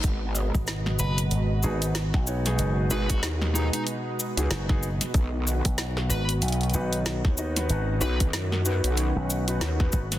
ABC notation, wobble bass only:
X:1
M:4/4
L:1/16
Q:"Swing 16ths" 1/4=94
K:G#m
V:1 name="Wobble bass" clef=bass
G,,,3 z12 z | z2 G,,,2 D,,3 z4 C,, z4 | B,,,3 z12 z | z2 B,,,2 F,,3 B,,,2 z3 D,,2 z2 |]